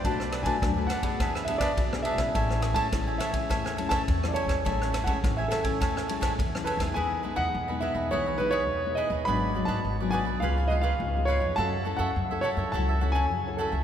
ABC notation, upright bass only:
X:1
M:4/4
L:1/16
Q:1/4=104
K:A
V:1 name="Upright bass" clef=bass
B,,,3 B,, D,,2 z2 E,,4 B,,,3 B,,, | A,,,3 A,, A,,,2 z2 E,,4 E,,3 E,, | A,,,3 A,, A,,,2 z2 E,,4 E,,3 E,, | [K:E] E,,3 E,, E,,3 E,, B,,,4 E,,3 D,, |
G,,,3 G,,, G,,,3 B,,, C,,4 C,,3 ^E,, | F,,3 F,, F,,3 F,, C,,4 F,,3 C,, |]